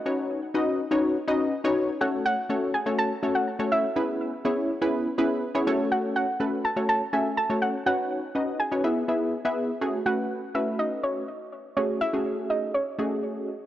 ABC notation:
X:1
M:4/4
L:1/16
Q:1/4=123
K:F#dor
V:1 name="Synth pluck"
d4 z12 | f2 f4 g2 a3 f3 e2- | e4 z12 | f2 f4 a2 a2 g2 a2 f2 |
f6 g8 z2 | z2 f4 e2 d2 c6 | c2 e4 d2 c6 z2 |]
V:2 name="Analog polysynth"
[CDFBc]3 z [CDFBd]2 z [CDFBc]2 z [CDFBd]2 z [CDFBc]2 z | [A,CFAc]3 z [A,CFAc]2 z [A,CFAc]2 z [A,CFAc]2 z [A,CFAc]2 z | [B,CEGB]3 z [B,CEGc]2 z [B,CEGB]2 z [B,CEGB]2 z [B,CEGc] [A,CFAc]2- | [A,CFAc]3 z [A,CFAB]2 z [A,CFAc]2 z [A,CFAe]2 z [A,CFAc]2 z |
[CDFBc]3 z [CDFBd]2 z [CDFBc] [B,EGBe]2 [B,EGBe]2 z [B,EGBe]2 z | [A,CFG] z [A,CFB]3 z [A,CFB]6 z4 | [A,CFG]2 z [A,CFG]4- [A,CFG] z2 [A,CFG]4 z2 |]